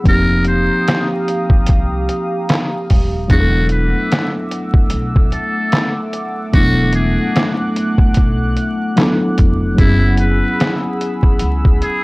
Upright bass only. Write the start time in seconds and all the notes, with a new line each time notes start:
0.06 F1
1.70 C2
2.91 D#1
3.30 E1
4.93 B1
6.54 E1
8.18 B1
9.40 F1
9.79 F#1
11.42 C#2